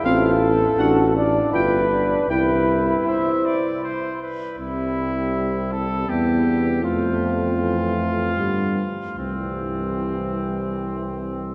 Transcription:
<<
  \new Staff \with { instrumentName = "Trumpet" } { \time 3/4 \key c \major \tempo 4 = 79 f''8 r8 fis''8 r8 g''8 r8 | g''8 r8 e''8 d''8 c''8 b'8 | e'4. a'8 g'4 | f'2. |
c'2. | }
  \new Staff \with { instrumentName = "Flugelhorn" } { \time 3/4 \key c \major a'4. d''8 b'4 | b'4 c''4 r4 | e'2 e'8 d'8 | c'2 b8 r8 |
c'2. | }
  \new Staff \with { instrumentName = "French horn" } { \time 3/4 \key c \major c'8 r8 d'8 r8 f'8 r8 | e'8 r2 r8 | c'2 b4 | a2 g8 r8 |
g2. | }
  \new Staff \with { instrumentName = "Trombone" } { \time 3/4 \key c \major f'8 r8 fis'8 d'8 e'8 d'8 | e'2~ e'8 r8 | g2 g4 | f4 e4 d8 r8 |
e2. | }
  \new Staff \with { instrumentName = "Bass trombone" } { \clef bass \time 3/4 \key c \major a,,4 a,,4 g,,4 | c,4 r2 | c,2 e,4 | f,2 g,8 r8 |
c,2. | }
>>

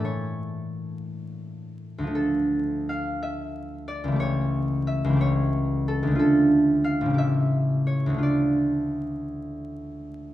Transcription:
<<
  \new Staff \with { instrumentName = "Harp" } { \time 6/8 \key d \minor \tempo 4. = 58 cis''2. | a'4 f''8 e''4 d''8 | cis''4 e''8 cis''4 a'8 | a'4 f''8 e''4 cis''8 |
d''2. | }
  \new Staff \with { instrumentName = "Harp" } { \clef bass \time 6/8 \key d \minor <a, e a a'>2. | <d, f a>2. | <cis, e a g'>4. <cis, e a g'>4. | <d, d a f'>4. <a,, cis a g'>4. |
<d, d a f'>2. | }
>>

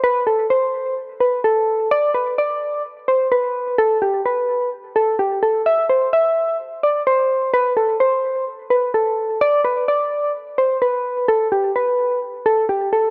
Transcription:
\new Staff \with { instrumentName = "Synth keys" } { \time 4/4 \key b \phrygian \tempo 4 = 128 b'8 a'8 c''4 r8 b'8 a'4 | d''8 b'8 d''4 r8 c''8 b'4 | a'8 g'8 b'4 r8 a'8 g'8 a'8 | e''8 c''8 e''4 r8 d''8 c''4 |
b'8 a'8 c''4 r8 b'8 a'4 | d''8 b'8 d''4 r8 c''8 b'4 | a'8 g'8 b'4 r8 a'8 g'8 a'8 | }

